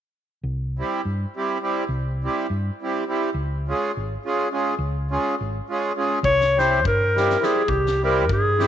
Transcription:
0.43 0.81 C2 medium
0.79 1.01 G3 soft
0.79 1.01 C4 soft
0.79 1.01 E4 soft
0.79 1.02 G4 medium
1.05 1.24 G2 medium
1.36 1.58 G3 medium
1.36 1.58 C4 soft
1.36 1.58 E4 soft
1.36 1.58 G4 medium
1.61 1.83 G3 soft
1.61 1.84 C4 soft
1.61 1.84 E4 soft
1.61 1.84 G4 medium
1.89 2.26 C2 medium
2.24 2.46 G3 medium
2.24 2.46 C4 soft
2.24 2.46 E4 soft
2.24 2.47 G4 medium
2.50 2.69 G2 medium
2.82 3.03 G3 medium
2.82 3.04 C4 soft
2.82 3.04 E4 soft
2.82 3.04 G4 medium
3.07 3.29 G3 medium
3.07 3.29 C4 soft
3.07 3.30 E4 soft
3.07 3.30 G4 medium
3.34 3.72 C#2 medium
3.68 3.91 G#3 medium
3.68 3.91 C#4 soft
3.68 3.91 F4 medium
3.68 3.92 G#4 medium
3.97 4.16 G#1 medium
4.25 4.48 G#3 medium
4.25 4.48 C#4 soft
4.25 4.48 F4 medium
4.25 4.49 G#4 medium
4.51 4.74 G#3 soft
4.51 4.74 C#4 soft
4.51 4.74 F4 soft
4.51 4.75 G#4 medium
4.79 5.16 C#2 medium
5.11 5.35 G#3 medium
5.11 5.35 C#4 medium
5.11 5.35 F4 soft
5.11 5.35 G#4 medium
5.41 5.59 G#1 medium
5.69 5.92 G#3 soft
5.69 5.92 C#4 soft
5.69 5.92 F4 medium
5.69 5.93 G#4 medium
5.96 6.18 G#3 medium
5.96 6.19 C#4 soft
5.96 6.19 F4 soft
5.96 6.19 G#4 medium
6.23 6.86 C2 medium
6.23 6.61 C#5 loud
6.23 kick medium
6.41 snare soft
6.56 6.79 G3 medium
6.56 6.80 C4 soft
6.56 6.80 E4 medium
6.56 6.80 G4 medium
6.56 6.86 C5 medium
6.56 snare soft
6.85 7.35 G2 medium
6.85 7.46 A#4 medium
6.85 kick medium
7.14 7.37 G3 medium
7.14 7.37 C4 soft
7.14 7.37 E4 soft
7.14 7.38 G4 medium
7.14 snare soft
7.30 snare soft
7.40 7.62 G3 medium
7.40 7.63 C4 medium
7.40 7.63 E4 soft
7.40 7.63 G4 medium
7.40 7.71 G#4 medium
7.40 snare soft
7.68 8.29 C2 loud
7.68 8.03 G4 medium
7.68 kick medium
7.86 snare soft
8.02 8.24 G3 medium
8.02 8.24 C4 medium
8.02 8.25 E4 soft
8.02 8.25 G4 medium
8.02 8.29 A#4 medium
8.29 8.67 G2 medium
8.29 8.67 G#4 medium
8.29 kick medium
8.57 8.67 G3 medium
8.57 8.67 C4 soft
8.57 8.67 E4 medium
8.57 8.67 G4 medium
8.57 snare soft

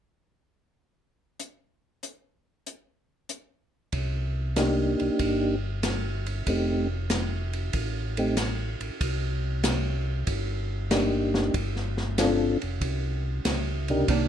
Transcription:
1.40 closed hi-hat soft
2.03 closed hi-hat soft
2.67 closed hi-hat soft
3.29 closed hi-hat soft
3.92 4.96 C2 medium
3.92 kick soft
3.92 ride soft
4.56 5.55 A#3 medium
4.56 5.55 D4 soft
4.56 5.56 D#4 soft
4.56 5.56 G4 medium
4.56 snare soft
4.56 hi-hat pedal soft
4.56 ride soft
4.99 5.10 C2 soft
4.99 ride soft
5.19 6.43 G1 medium
5.19 kick soft
5.19 ride soft
5.83 snare soft
5.83 hi-hat pedal soft
5.83 ride soft
6.26 ride soft
6.47 7.70 F1 medium
6.47 6.87 A3 soft
6.47 6.87 C4 soft
6.47 6.87 D#4 soft
6.47 6.88 G4 soft
6.47 kick soft
6.47 ride soft
7.10 snare medium
7.10 hi-hat pedal soft
7.10 ride soft
7.53 ride soft
7.73 8.77 A1 medium
7.73 kick soft
7.73 ride soft
8.17 8.36 A3 soft
8.17 8.36 C4 soft
8.17 8.36 D#4 soft
8.17 8.36 G4 medium
8.17 ride soft
8.37 snare soft
8.37 hi-hat pedal medium
8.37 ride soft
8.81 8.91 A1 soft
8.81 ride soft
9.01 10.24 C2 medium
9.01 kick soft
9.01 ride medium
9.63 snare medium
9.63 hi-hat pedal medium
9.63 ride medium
10.27 11.50 G1 medium
10.27 kick soft
10.27 ride soft
10.91 11.55 A#3 soft
10.91 11.55 D4 soft
10.91 11.55 D#4 soft
10.91 11.55 G4 medium
10.91 snare medium
10.91 hi-hat pedal soft
10.91 ride soft
11.34 snare soft
11.54 12.57 G1 medium
11.54 kick soft
11.54 ride soft
11.76 snare soft
11.97 snare soft
12.18 12.58 C4 soft
12.18 12.58 D4 soft
12.18 12.58 F4 soft
12.18 12.58 A4 soft
12.18 snare medium
12.18 hi-hat pedal soft
12.18 ride medium
12.62 12.81 F1 medium
12.62 ride soft
12.81 13.41 C2 medium
12.81 kick soft
12.81 ride soft
13.45 14.05 C#2 medium
13.45 snare soft
13.45 hi-hat pedal soft
13.45 ride medium
13.88 14.07 C3 soft
13.88 14.07 D4 soft
13.88 14.08 D#4 soft
13.88 14.08 G4 soft
13.88 14.08 A#4 medium
13.88 ride soft
14.08 14.28 C2 medium
14.08 14.28 D#3 soft
14.08 14.28 A#3 soft
14.08 14.28 D4 medium
14.08 kick soft
14.08 ride medium

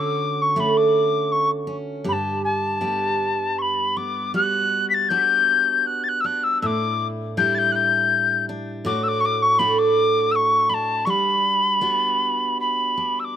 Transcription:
0.00 3.35 D3 medium
0.00 0.56 A3 medium
0.00 0.56 C#4 medium
0.00 0.56 F#4 medium
0.00 0.43 D6 medium
0.41 0.61 C#6 medium
0.56 2.13 A3 medium
0.56 1.66 C#4 medium
0.56 2.05 F#4 medium
0.56 0.78 B5 medium
0.77 1.33 D6 medium
1.32 1.50 C#6 medium
1.67 2.12 C#4 medium
2.04 4.34 G2 medium
2.04 2.82 G4 medium
2.08 2.42 A5 medium
2.08 2.13 B5 medium
2.44 3.60 A5 medium
2.81 4.34 G3 medium
2.81 3.96 B3 medium
2.81 4.34 G4 soft
3.58 3.98 B5 medium
3.58 3.63 C#6 medium
3.97 5.10 B3 soft
3.97 4.35 D6 medium
4.34 6.65 G3 medium
4.34 5.10 F#4 soft
4.34 4.88 F#6 medium
4.89 4.95 B6 medium
4.94 5.10 A6 medium
5.09 6.70 B3 soft
5.09 6.24 D4 medium
5.09 6.63 F#4 medium
5.09 5.88 G6 medium
5.86 6.04 F#6 medium
6.03 6.09 A6 medium
6.08 6.21 F#6 medium
6.20 6.26 E6 medium
6.24 7.37 D4 medium
6.24 6.45 F#6 medium
6.43 6.61 E6 medium
6.61 8.83 A2 medium
6.61 7.37 E4 medium
6.61 6.67 E6 medium
6.66 7.07 D6 medium
7.37 8.93 G3 medium
7.37 8.49 D4 medium
7.37 8.86 E4 medium
7.37 7.55 G6 medium
7.54 7.72 G6 medium
7.54 7.59 A6 medium
7.71 7.76 F#6 medium
7.71 8.45 G6 medium
8.49 9.59 D4 medium
8.85 11.05 A2 medium
8.85 9.60 F#4 medium
8.85 9.04 D6 loud
9.03 9.09 E6 loud
9.08 9.21 D6 loud
9.20 9.26 C#6 loud
9.25 9.43 D6 loud
9.42 9.60 C#6 loud
9.59 11.13 A3 medium
9.59 10.69 D4 medium
9.59 11.07 F#4 medium
9.59 9.80 B5 medium
9.78 10.33 D6 loud
10.31 10.71 C#6 medium
10.31 10.36 E6 medium
10.69 11.81 D4 medium
10.69 10.75 B5 medium
10.74 11.06 A5 medium
11.05 13.36 G3 medium
11.05 11.81 F#4 medium
11.05 11.11 C#6 medium
11.10 12.58 B5 medium
11.81 13.37 B3 medium
11.81 12.96 D4 medium
11.81 13.37 F#4 medium
12.60 13.21 B5 medium
12.97 13.37 D4 soft
13.19 13.25 E6 medium
13.24 13.37 D6 medium

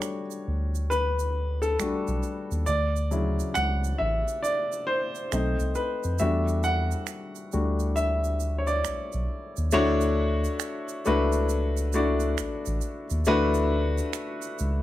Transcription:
0.00 0.21 G3 soft
0.00 0.21 A3 soft
0.00 0.21 D4 soft
0.00 0.22 F#4 medium
0.00 0.42 C#5 medium
0.00 finger snap medium
0.00 shaker medium
0.31 shaker soft
0.48 1.76 D2 medium
0.75 shaker soft
0.90 1.64 B4 medium
0.90 shaker medium
1.19 shaker soft
1.62 2.19 A4 medium
1.62 shaker soft
1.79 1.91 B1 soft
1.79 2.19 G3 soft
1.79 2.19 A3 soft
1.79 2.19 D4 soft
1.79 2.20 F#4 soft
1.79 finger snap medium
1.79 shaker medium
2.07 2.21 B1 medium
2.07 shaker soft
2.23 shaker soft
2.51 2.65 D#2 medium
2.51 shaker soft
2.66 3.40 D2 loud
2.66 3.51 D5 medium
2.66 shaker medium
2.96 shaker soft
3.11 5.28 C#3 soft
3.11 5.28 F#3 soft
3.11 5.28 E4 medium
3.11 shaker soft
3.39 shaker soft
3.54 3.92 C#2 medium
3.54 3.96 F#5 loud
3.54 finger snap medium
3.54 shaker medium
3.84 shaker soft
3.98 4.23 A1 medium
3.98 4.44 E5 medium
4.28 shaker soft
4.43 4.84 D5 medium
4.43 shaker medium
4.72 shaker soft
4.87 5.78 C5 medium
5.15 shaker soft
5.32 5.55 B1 loud
5.32 5.95 A3 medium
5.32 5.95 C4 soft
5.32 5.95 D#4 medium
5.32 finger snap medium
5.32 shaker medium
5.60 5.74 C2 medium
5.60 shaker soft
5.75 6.21 B4 medium
5.75 shaker soft
6.03 6.18 F2 medium
6.03 shaker soft
6.18 6.93 E2 loud
6.18 7.51 G3 medium
6.18 7.52 A3 soft
6.18 7.52 D4 soft
6.18 7.52 F#4 medium
6.18 6.65 E5 medium
6.18 shaker medium
6.48 shaker soft
6.63 7.48 F#5 medium
6.63 shaker soft
6.91 shaker soft
7.07 finger snap medium
7.07 shaker medium
7.35 shaker soft
7.52 8.81 D2 medium
7.52 7.93 G3 soft
7.52 7.93 A3 soft
7.52 7.93 D4 soft
7.52 7.93 F#4 soft
7.52 shaker soft
7.80 shaker soft
7.96 8.61 E5 medium
7.96 shaker medium
8.24 shaker soft
8.40 shaker soft
8.58 8.68 C#5 medium
8.67 9.24 D5 medium
8.67 shaker soft
8.85 8.97 B1 soft
8.85 finger snap medium
8.85 shaker medium
9.12 9.27 B1 medium
9.12 shaker soft
9.57 9.71 D#2 medium
9.57 shaker soft
9.71 10.46 D2 loud
9.71 10.83 A3 loud
9.71 10.83 D4 loud
9.71 10.83 E4 loud
9.71 10.83 F#4 loud
9.71 10.84 C#5 loud
9.71 shaker medium
10.01 shaker medium
10.44 shaker soft
10.60 finger snap medium
10.60 shaker medium
10.88 shaker medium
11.05 12.35 C#2 medium
11.05 11.80 A3 medium
11.05 11.80 D4 medium
11.05 11.81 E4 medium
11.05 11.81 F#4 medium
11.05 11.81 B4 loud
11.05 shaker soft
11.32 shaker soft
11.49 shaker medium
11.77 shaker medium
11.93 13.04 A3 medium
11.93 13.04 D4 medium
11.93 13.04 E4 medium
11.93 13.04 F#4 medium
11.93 13.05 D5 medium
11.93 shaker medium
12.20 shaker soft
12.38 12.50 A1 soft
12.38 finger snap medium
12.38 shaker medium
12.66 12.80 A1 medium
12.66 shaker soft
12.81 shaker soft
13.10 13.24 D#2 medium
13.10 shaker soft
13.25 13.99 D2 loud
13.25 14.52 A3 loud
13.25 14.52 D4 loud
13.25 14.52 E4 loud
13.25 14.52 F#4 loud
13.25 14.53 B4 loud
13.25 shaker medium
13.54 shaker medium
13.98 shaker soft
14.13 finger snap medium
14.13 shaker medium
14.42 shaker soft
14.59 14.83 C#2 medium
14.59 shaker soft

